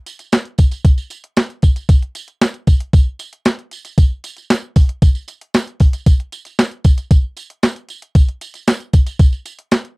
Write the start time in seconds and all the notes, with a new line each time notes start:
0.06 closed hi-hat, tambourine
0.19 closed hi-hat, tambourine
0.32 snare, closed hi-hat, tambourine
0.45 closed hi-hat
0.58 kick, closed hi-hat, tambourine
0.71 closed hi-hat, tambourine
0.85 kick, closed hi-hat, tambourine
0.98 tambourine
1.10 closed hi-hat, tambourine
1.24 closed hi-hat
1.37 snare, closed hi-hat, tambourine
1.50 closed hi-hat
1.62 kick, closed hi-hat, tambourine
1.76 closed hi-hat, tambourine
1.89 kick, closed hi-hat, tambourine
2.02 closed hi-hat
2.15 closed hi-hat, tambourine
2.28 closed hi-hat
2.41 snare, closed hi-hat, tambourine
2.54 closed hi-hat
2.67 kick, closed hi-hat, tambourine
2.80 closed hi-hat
2.93 kick, closed hi-hat, tambourine
3.19 closed hi-hat, tambourine
3.33 closed hi-hat
3.45 snare, closed hi-hat, tambourine
3.59 closed hi-hat
3.71 closed hi-hat, tambourine
3.85 closed hi-hat, tambourine
3.98 kick, closed hi-hat, tambourine
4.24 closed hi-hat, tambourine
4.37 closed hi-hat, tambourine
4.50 snare, closed hi-hat, tambourine
4.76 kick, open hi-hat, tambourine
4.89 closed hi-hat
5.02 kick, closed hi-hat, tambourine
5.15 tambourine
5.28 closed hi-hat, tambourine
5.41 closed hi-hat
5.54 snare, closed hi-hat, tambourine
5.67 closed hi-hat
5.80 kick, open hi-hat, tambourine
5.93 closed hi-hat, tambourine
6.06 kick, closed hi-hat, tambourine
6.20 closed hi-hat
6.32 closed hi-hat, tambourine
6.45 closed hi-hat, tambourine
6.59 snare, closed hi-hat, tambourine
6.71 closed hi-hat
6.84 kick, closed hi-hat, tambourine
6.98 closed hi-hat, tambourine
7.11 kick, closed hi-hat, tambourine
7.37 closed hi-hat, tambourine
7.50 closed hi-hat
7.63 snare, closed hi-hat, tambourine
7.76 closed hi-hat
7.89 closed hi-hat, tambourine
8.02 closed hi-hat
8.15 kick, closed hi-hat, tambourine
8.29 closed hi-hat
8.41 closed hi-hat, tambourine
8.54 closed hi-hat, tambourine
8.67 snare, closed hi-hat, tambourine
8.80 closed hi-hat
8.93 kick, closed hi-hat, tambourine
9.07 closed hi-hat, tambourine
9.19 kick, closed hi-hat, tambourine
9.33 tambourine
9.46 closed hi-hat, tambourine
9.59 closed hi-hat
9.72 snare, closed hi-hat, tambourine
9.85 closed hi-hat